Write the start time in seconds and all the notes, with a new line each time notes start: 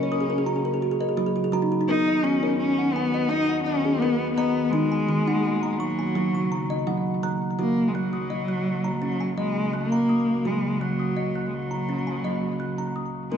Already playing: C#3 F#3 A#3 C#4 F#4 A#4
0.03 C#5
0.12 A#4 D#6
0.20 G#4
0.30 A#4
0.38 G#4
0.46 F#4 A#5
0.56 G#4
0.65 A#4
0.74 G#4
0.82 F#4
0.91 G#4
1.00 A#4 D#5
1.09 G#4
1.17 F#3 F#4
1.26 G#4
1.36 F#4
1.44 G#4
1.52 F#3 F#4 A#5
1.62 D#4
1.72 F#4
1.81 D#4
1.88 D#3 B3 D#4 F#4 A#4
2.08 D#5
2.23 B3 C#4
2.43 A#4 C#5
2.59 C#4
2.78 F#5
2.94 B3 G#5
3.14 D#5
3.29 D#4 D#5
3.49 F#5
3.64 C#4 D#5
3.85 G#4
3.99 B3 A#4
4.35 B3 D#5 A#5
4.70 D#3 G#3 A#3 D#4
4.92 G#5
5.09 D#3
5.28 D#4 F#5
5.63 A#5
5.72 G#3
5.78 F#3 C#6
5.99 G#5
6.15 C#3 F#3 F#4
6.35 C#6
6.52 A#5
6.70 D#5
6.87 F#3 F#5
7.23 F#3 A#5 F#6
7.59 C#3 F#3 A#3 F#4
7.88 G#3
7.95 F#3 F#6
8.13 D#6
8.30 D#5
8.48 F#6
8.84 A#5
9.02 F#3 C#4
9.20 G#5
9.38 F#3 G#3 D#5
9.73 A#3 F#6
9.92 A#5
10.09 D#6
10.45 F#3 G#3 F#4
10.81 F#3 F#6
10.99 D#6
11.17 D#5
11.35 F#6
11.48 G#3
11.54 F#3
11.71 A#5
11.89 C#4
12.07 G#5
12.24 F#3 D#5
12.60 F#6
12.78 A#5
12.96 D#6
13.31 D#3 G#3 B3 A#4